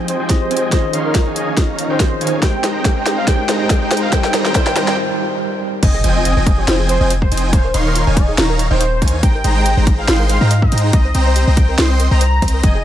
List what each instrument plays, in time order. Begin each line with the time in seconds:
Already playing: supersaw synth F3 C4 D#5 G5 G#5, tine electric piano F3 C4 G4 G#4 D#5, analog synth pad F3 G#3 D#4 G5, riser
0.08 soft synth lead C5, closed hi-hat
0.20 supersaw synth F3 C4 D#5 G5 G#5
0.29 tine electric piano F3 C4 G4 G#4 D#5, kick, snare, closed hi-hat
0.41 soft synth lead C5
0.51 supersaw synth F3 C4 D#5 G5 G#5, closed hi-hat
0.57 closed hi-hat
0.70 tine electric piano D#3 C#4 F4 G#4, supersaw synth D#3 D#4 C#5 F5 G#5, analog synth pad C#4 G#4, soft synth lead C5, kick, snare, closed hi-hat
0.74 tine electric piano D#5
0.93 supersaw synth D#3 D#4 C#5 F5 C6, closed hi-hat
1.05 soft synth lead A#4
1.15 kick, snare, closed hi-hat
1.26 supersaw synth D#3 D#4 C#5 F5 G#5
1.36 soft synth lead D#5, closed hi-hat
1.57 supersaw synth D#3 D#4 C#5 F5 A#5, kick, snare, closed hi-hat
1.79 closed hi-hat
1.88 tine electric piano D#3 C#4 F4 G#4 D#5, supersaw synth D#3 D#4 C#5 F5 G5, soft synth lead C5
2.00 kick, snare, closed hi-hat
2.21 supersaw synth D#3 D#4 C#5 F5 G#5, closed hi-hat
2.27 closed hi-hat
2.40 tine electric piano G#3 D#4 G4 A#4, analog synth pad G#3 C4 G4 A#4, supersaw synth G#3 D#4 C5 G5 A#5, soft synth lead G5, kick, snare, closed hi-hat
2.45 tine electric piano C5
2.63 supersaw synth G#3 D#4 C5 G5 A#5, snare, closed hi-hat
2.75 soft synth lead G5
2.85 kick, snare, closed hi-hat
2.96 supersaw synth G#3 D#4 C5 G5 A#5
3.06 snare, closed hi-hat
3.18 soft synth lead F5
3.25 tine electric piano G#3 D#4 G4 A#4, supersaw synth G#3 D#4 C5 G5 A#5, soft synth lead G5, kick, snare, closed hi-hat
3.29 tine electric piano C5
3.49 supersaw synth G#3 D#4 C5 G5 A#5, snare, closed hi-hat
3.60 soft synth lead G5
3.70 kick, snare, closed hi-hat
3.82 supersaw synth G#3 D#4 C5 G5 A#5
3.91 snare, closed hi-hat
3.97 closed hi-hat
4.03 soft synth lead F5
4.10 analog synth pad D#3 C4 A#4, tine electric piano G3 D#4 G4 A#4 C5, supersaw synth G3 D#4 C5 G5 A#5, soft synth lead G5, kick, snare, closed hi-hat
4.24 snare
4.34 supersaw synth G3 D#4 C5 G5 A#5, snare, closed hi-hat
4.45 soft synth lead G5, snare
4.53 tine electric piano G3 D#4 G4 A#4 C5, supersaw synth G3 D#4 C5 G5 A#5, soft synth lead G5, kick, snare, closed hi-hat
4.66 snare
4.76 supersaw synth G3 D#4 C5 G5 A#5, snare, closed hi-hat
4.88 soft synth lead G5, snare
5.83 808-style bass F1, supersaw synth F3 C4 D#5 G5 G#5, synth arpeggio sound D#4, soft synth lead D#5, digital synth lead G#5, kick, closed hi-hat, crash, impact
5.94 synth arpeggio sound G#4
6.04 808-style bass F1, supersaw synth F3 C4 D#5 G5 G#5, synth arpeggio sound D#5, digital synth lead G#5, closed hi-hat
6.15 soft synth lead D#5
6.25 synth arpeggio sound F4, closed hi-hat
6.37 808-style bass F1, supersaw synth F3 C4 D#5 G5 G#5, synth arpeggio sound C5, digital synth lead G#5
6.47 synth arpeggio sound D#4, kick, closed hi-hat
6.58 synth arpeggio sound G4, soft synth lead C5
6.68 808-style bass F1, supersaw synth F3 C4 D#5 G5 G#5, digital synth lead G#5, snare, closed hi-hat
6.79 synth arpeggio sound G#4
6.89 synth arpeggio sound C5, soft synth lead C5, closed hi-hat
7.00 808-style bass F1, supersaw synth F3 C4 D#5 G5 G#5, synth arpeggio sound D#5, digital synth lead G#5
7.10 synth arpeggio sound D#5, closed hi-hat
7.22 soft synth lead C5, kick
7.31 808-style bass F1, supersaw synth F3 C4 D#5 G5 G#5, synth arpeggio sound D#4, digital synth lead G#5, closed hi-hat
7.37 closed hi-hat
7.43 synth arpeggio sound D#4
7.53 808-style bass D#1, supersaw synth D#3 D#4 C#5 F5 G#5, synth arpeggio sound D#4, soft synth lead C5, digital synth lead G#5, kick, closed hi-hat
7.64 synth arpeggio sound A#4
7.74 808-style bass D#1, supersaw synth D#3 D#4 C#5 F5 C6, synth arpeggio sound D#5, digital synth lead C6, closed hi-hat
7.86 soft synth lead A#4
7.95 synth arpeggio sound F4, closed hi-hat
8.07 808-style bass D#1, supersaw synth D#3 D#4 C#5 F5 G#5, synth arpeggio sound C#5, digital synth lead G#5
8.17 synth arpeggio sound D#4, soft synth lead D#5, kick, closed hi-hat
8.28 synth arpeggio sound G#4
8.38 808-style bass D#1, supersaw synth D#3 D#4 C#5 F5 A#5, digital synth lead A#5, snare, closed hi-hat
8.50 synth arpeggio sound A#4
8.59 synth arpeggio sound C#5, closed hi-hat
8.71 808-style bass D#1, supersaw synth D#3 D#4 C#5 F5 G5, soft synth lead C5, synth arpeggio sound D#5, digital synth lead G5
8.81 synth arpeggio sound D#5, closed hi-hat
9.02 808-style bass D#2, supersaw synth D#3 D#4 C#5 F5 G#5, synth arpeggio sound D#4, digital synth lead G#5, kick, closed hi-hat
9.08 closed hi-hat
9.13 synth arpeggio sound D#4
9.23 808-style bass G#1, supersaw synth G#3 D#4 C5 G5 A#5, synth arpeggio sound D#4, soft synth lead G5, digital synth lead A#5, kick, closed hi-hat
9.35 synth arpeggio sound A#4
9.44 808-style bass G#1, supersaw synth G#3 D#4 C5 G5 A#5, synth arpeggio sound D#5, digital synth lead A#5, closed hi-hat
9.56 soft synth lead G5
9.66 synth arpeggio sound G4, closed hi-hat
9.77 808-style bass G#1, supersaw synth G#3 D#4 C5 G5 A#5, synth arpeggio sound C5, digital synth lead A#5
9.87 synth arpeggio sound D#4, kick, closed hi-hat
9.98 synth arpeggio sound G#4, soft synth lead F5
10.08 808-style bass G#1, supersaw synth G#3 D#4 C5 G5 C6, digital synth lead C6, snare, closed hi-hat
10.20 synth arpeggio sound A#4
10.29 synth arpeggio sound C5, soft synth lead F5, closed hi-hat
10.41 808-style bass G#2, supersaw synth G#3 D#4 C5 G5 A#5, synth arpeggio sound D#5, digital synth lead A#5
10.51 synth arpeggio sound D#5, closed hi-hat
10.62 soft synth lead D#5, kick
10.72 808-style bass G#2, supersaw synth G#3 D#4 C5 G5 A#5, synth arpeggio sound D#4, digital synth lead A#5, closed hi-hat
10.78 closed hi-hat
10.84 synth arpeggio sound D#4
10.93 808-style bass C2, supersaw synth C4 C5 D#5 G5 A#5, synth arpeggio sound D#4, soft synth lead D#5, digital synth lead A#5, kick, closed hi-hat
11.05 synth arpeggio sound C5
11.15 808-style bass C2, supersaw synth C4 C5 D#5 G5 A#5, synth arpeggio sound G5, digital synth lead A#5, closed hi-hat
11.26 soft synth lead C5
11.36 synth arpeggio sound G4, closed hi-hat
11.47 808-style bass C2, supersaw synth C4 C5 D#5 G5 A#5, synth arpeggio sound D#5, digital synth lead A#5
11.57 synth arpeggio sound D#4, soft synth lead G5, kick, closed hi-hat
11.69 synth arpeggio sound A#4
11.78 808-style bass C2, supersaw synth C4 C5 D#5 G5 C6, digital synth lead C6, snare, closed hi-hat
11.90 synth arpeggio sound C5
12.00 synth arpeggio sound A#4, closed hi-hat
12.11 808-style bass C2, supersaw synth C4 C5 D#5 G5 A#5, synth arpeggio sound G5, soft synth lead A#5, digital synth lead A#5
12.21 synth arpeggio sound C5, closed hi-hat
12.42 808-style bass C2, supersaw synth C4 C5 D#5 G5 A#5, synth arpeggio sound C5, digital synth lead A#5, kick, closed hi-hat
12.48 closed hi-hat
12.54 synth arpeggio sound A#4
12.63 808-style bass F1, supersaw synth F3 C4 D#5 G5 G#5, synth arpeggio sound D#4, soft synth lead D#5, digital synth lead G#5, kick, closed hi-hat
12.75 synth arpeggio sound G#4